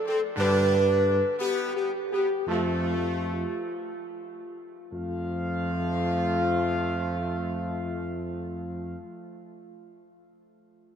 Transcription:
0.06 C4 A4
0.36 G2 D3 G3 D4
0.40 B4
1.39 B3 G4
1.74 B3 G4
2.11 B3 G4
2.47 F2 F3 A3 F4
4.92 F2 F3 A3 F4 F5

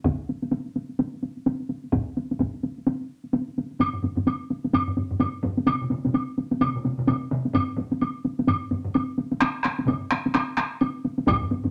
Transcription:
0.04 taiko, taiko high
0.20 taiko high
0.29 taiko high
0.42 taiko high
0.52 taiko high
0.66 taiko high
0.76 taiko high
0.89 taiko high
0.99 taiko high
1.14 taiko high
1.23 taiko high
1.37 taiko high
1.46 taiko high
1.60 taiko high
1.69 taiko high
1.84 taiko high
1.92 taiko, taiko high
2.17 taiko high
2.31 taiko high
2.39 taiko, taiko high
2.54 taiko high
2.63 taiko high
2.78 taiko high
2.87 taiko high
3.01 taiko high
3.24 taiko high
3.33 taiko high
3.48 taiko high
3.58 taiko high
3.71 taiko high
3.79 taiko low-mid, taiko high, high woodblock
3.93 taiko low-mid
4.02 taiko low-mid, taiko high
4.16 taiko low-mid, taiko high
4.27 taiko high, high woodblock
4.50 taiko high
4.64 taiko high
4.73 taiko low-mid, taiko high, high woodblock
4.88 taiko low-mid
4.97 taiko low-mid, taiko high
5.11 taiko low-mid
5.20 taiko low-mid, taiko high, high woodblock
5.43 taiko low-mid, taiko high
5.57 taiko high
5.67 taiko mid, taiko high, high woodblock
5.81 taiko mid
5.90 taiko mid, taiko high
6.05 taiko mid, taiko high
6.14 taiko high, high woodblock
6.38 taiko high
6.51 taiko high
6.61 taiko mid, taiko high, high woodblock
6.76 taiko mid
6.85 taiko mid, taiko high
6.99 taiko mid
7.07 taiko mid, taiko high, high woodblock
7.31 taiko mid, taiko high
7.45 taiko high
7.53 taiko low-mid, taiko high, high woodblock
7.77 taiko low-mid, taiko high
7.92 taiko high
8.01 taiko high, high woodblock
8.25 taiko high
8.39 taiko high
8.47 taiko low-mid, taiko high, high woodblock
8.71 taiko low-mid, taiko high
8.85 taiko low-mid
8.94 taiko high, high woodblock
9.18 taiko high
9.32 taiko high
9.41 taiko rim, taiko high, high woodblock
9.63 taiko rim
9.65 taiko rim, taiko high
9.79 taiko high
9.87 taiko low-mid, taiko mid, taiko high, high woodblock
10.11 taiko rim, taiko high
10.26 taiko high
10.34 taiko rim, taiko high, high woodblock
10.57 taiko rim, taiko high, high woodblock
10.81 taiko high, high woodblock
11.05 taiko high
11.18 taiko high
11.26 taiko, taiko low-mid, taiko high, high woodblock
11.41 taiko low-mid
11.51 taiko low-mid, taiko high
11.64 taiko low-mid, taiko high

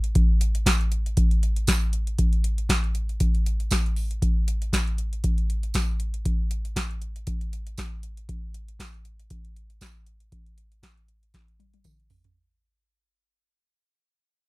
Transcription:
0.04 closed hi-hat
0.15 kick, closed hi-hat
0.41 closed hi-hat
0.55 closed hi-hat
0.66 kick, snare, closed hi-hat, tambourine
0.81 closed hi-hat
0.92 closed hi-hat
1.06 closed hi-hat
1.17 kick, closed hi-hat
1.31 closed hi-hat
1.43 closed hi-hat
1.56 closed hi-hat
1.67 kick, snare, closed hi-hat, tambourine
1.93 closed hi-hat
2.07 closed hi-hat
2.19 kick, closed hi-hat
2.33 closed hi-hat
2.44 closed hi-hat
2.58 closed hi-hat
2.69 kick, snare, closed hi-hat, tambourine
2.84 closed hi-hat
2.95 closed hi-hat
3.09 closed hi-hat
3.20 kick, closed hi-hat
3.35 closed hi-hat
3.46 closed hi-hat
3.60 closed hi-hat
3.71 kick, snare, closed hi-hat, tambourine
3.86 closed hi-hat
3.96 open hi-hat
4.11 closed hi-hat
4.22 kick, closed hi-hat
4.48 closed hi-hat
4.62 closed hi-hat
4.73 kick, snare, closed hi-hat, tambourine
4.88 closed hi-hat
4.98 closed hi-hat
5.13 closed hi-hat
5.24 kick, closed hi-hat
5.38 closed hi-hat
5.50 closed hi-hat
5.63 closed hi-hat
5.74 kick, snare, closed hi-hat, tambourine
6.00 closed hi-hat
6.14 closed hi-hat
6.25 kick, closed hi-hat
6.51 closed hi-hat
6.65 closed hi-hat
6.76 kick, snare, closed hi-hat, tambourine
6.91 closed hi-hat
7.02 closed hi-hat
7.16 closed hi-hat
7.27 kick, closed hi-hat
7.41 closed hi-hat
7.53 closed hi-hat
7.67 closed hi-hat
7.77 kick, snare, closed hi-hat, tambourine
8.03 closed hi-hat
8.17 closed hi-hat
8.29 kick, closed hi-hat
8.54 closed hi-hat
8.69 closed hi-hat
8.80 kick, snare, closed hi-hat, tambourine
8.94 closed hi-hat
9.05 closed hi-hat
9.20 closed hi-hat
9.30 kick, closed hi-hat
9.45 closed hi-hat
9.56 closed hi-hat
9.70 closed hi-hat
9.81 kick, snare, closed hi-hat, tambourine
10.07 closed hi-hat
10.20 closed hi-hat
10.32 kick, closed hi-hat
10.46 closed hi-hat
10.58 closed hi-hat
10.72 closed hi-hat
10.83 kick, snare, closed hi-hat, tambourine
10.97 closed hi-hat
11.08 closed hi-hat
11.23 closed hi-hat
11.34 kick, snare, closed hi-hat
11.48 closed hi-hat
11.59 closed hi-hat, high tom
11.74 closed hi-hat, high tom
11.84 kick, closed hi-hat, mid tom, tambourine
12.00 closed hi-hat
12.10 floor tom, open hi-hat
12.24 closed hi-hat, floor tom

